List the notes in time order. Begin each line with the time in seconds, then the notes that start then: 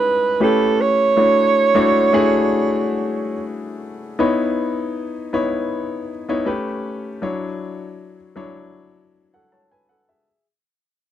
Already playing: G#3 C#4 D#4 E4 G#4 B4
0.40 A3 C#4 E4 G4 A4 B4
0.81 C#5
1.17 A3 D4 E4 F#4 C#5
1.75 A3 D4 E4 F#4 C#5
2.13 A3 D4 E4 F#4 G#4
4.19 B3 D#4 E4 C#5
5.33 B3 D#4 E4 C#5
6.29 B3 D#4 E4 C#5
6.46 A3 C#4 G4 B4
7.22 F#3 D4 E4 C#5
8.36 F#3 D4 E4 C#5
9.34 A4 F#5
9.52 C#5 A5
9.71 B4 G#5
9.89 A4 F#5
10.09 G#4 E5